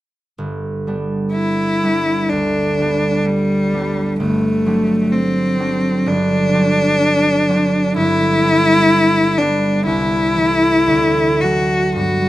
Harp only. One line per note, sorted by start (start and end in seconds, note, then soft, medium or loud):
0.38 4.19 G1 soft
0.87 1.82 G3 soft
0.87 1.82 B3 soft
0.87 1.83 D4 soft
1.83 2.79 G3 soft
1.83 2.79 B3 soft
1.83 2.80 D4 soft
2.32 4.24 D2 soft
2.80 3.73 G3 soft
2.80 3.73 B3 soft
2.80 3.73 D4 soft
3.74 4.23 G3 soft
3.74 4.24 B3 soft
3.74 4.66 D4 soft
4.20 6.05 G1 soft
4.66 5.59 F#3 soft
4.66 5.58 C4 soft
4.66 5.59 D4 soft
5.60 6.52 F#3 soft
5.60 6.53 C4 soft
5.60 6.53 D4 soft
6.06 7.95 G1 soft
6.53 7.47 F#3 soft
6.53 7.48 C4 soft
6.53 7.49 D4 soft
7.49 8.00 F#3 soft
7.49 8.00 C4 soft
7.49 8.43 D4 soft
7.96 9.91 G1 soft
8.43 9.37 G3 soft
8.43 9.37 B3 soft
8.43 9.38 D4 soft
9.38 9.91 G3 soft
9.38 9.91 B3 soft
9.38 9.91 D4 soft
9.87 10.92 C2 soft
10.34 10.92 E3 soft
10.34 11.42 A3 soft
10.39 10.93 E4 soft
10.88 12.04 D2 soft
11.42 12.04 F#3 soft
11.42 12.04 A3 soft
11.42 11.97 D4 soft
11.95 12.29 G2 soft
11.95 12.29 G3 soft
11.95 12.29 B3 soft
11.95 12.29 D4 soft